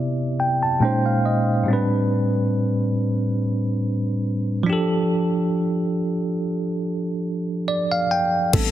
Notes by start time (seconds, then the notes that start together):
Already playing: C3 B3 E4 D5
0.40 G5
0.63 A5
0.80 A#2 G#3 C#4 D#4 G5
0.85 C5
1.06 F5
1.25 D#5
1.63 A2 G3
1.68 C4 D4
1.73 B4
4.63 F3 D4
4.70 G4 A4
7.68 D5
7.92 F5
8.11 G5
8.53 A1 C3 G3 A3 B3 C4 D4 A4, kick, closed hi-hat, crash